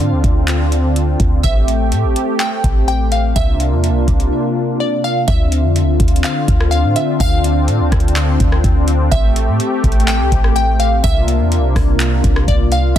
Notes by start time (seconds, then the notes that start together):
Already playing: D3 C4 D4 F4 F5
0.00 A2, closed hi-hat
0.12 D2
0.24 D2, kick, closed hi-hat
0.48 clap, closed hi-hat
0.72 closed hi-hat
0.96 closed hi-hat
1.20 D2, kick, closed hi-hat
1.43 A1 A3 G4 E5, kick, closed hi-hat
1.68 closed hi-hat
1.92 A2, closed hi-hat
2.04 A1
2.16 closed hi-hat
2.40 G5, clap, closed hi-hat
2.64 A1, kick, closed hi-hat
2.88 G5, closed hi-hat
3.12 F5, closed hi-hat
3.36 C2 C3 A#3 D4 F4 E5, kick, closed hi-hat
3.60 closed hi-hat
3.72 E2
3.84 closed hi-hat
3.90 C2
4.08 C2, kick, closed hi-hat
4.20 closed hi-hat
4.80 D5
5.04 F5
5.28 D2 D3 C4 D4 F4 E5, kick, closed hi-hat
5.52 closed hi-hat
5.64 F2
5.76 closed hi-hat
5.82 D2
6.00 D2, kick, closed hi-hat
6.08 closed hi-hat
6.16 closed hi-hat
6.24 F5, clap, closed hi-hat
6.48 D2, kick, closed hi-hat
6.60 cross-stick
6.71 F5, closed hi-hat
6.84 A2
6.96 E5, closed hi-hat
7.20 D2 F5, kick, closed hi-hat
7.44 closed hi-hat
7.68 A2, closed hi-hat
7.80 D2
7.92 D2, kick, cross-stick, closed hi-hat
8.00 closed hi-hat
8.08 closed hi-hat
8.16 clap, closed hi-hat
8.40 D2, kick, closed hi-hat
8.52 cross-stick
8.64 D2, kick, closed hi-hat
8.88 closed hi-hat
9.12 A1 A3 G4 E5, kick, closed hi-hat
9.36 closed hi-hat
9.48 A2
9.60 closed hi-hat
9.84 A1, kick, closed hi-hat
9.92 closed hi-hat
10.00 closed hi-hat
10.08 G5, clap, closed hi-hat
10.20 C2
10.32 A1, kick, closed hi-hat
10.44 cross-stick
10.56 G5, closed hi-hat
10.80 F5, closed hi-hat
11.04 C2 C3 A#3 D4 F4 E5, kick, closed hi-hat
11.28 closed hi-hat
11.40 E2
11.52 closed hi-hat
11.58 C2
11.76 C2, kick, cross-stick, open hi-hat
12.00 clap, closed hi-hat
12.24 C2, kick, closed hi-hat
12.36 cross-stick
12.48 C2 D5, kick, closed hi-hat
12.72 F5, closed hi-hat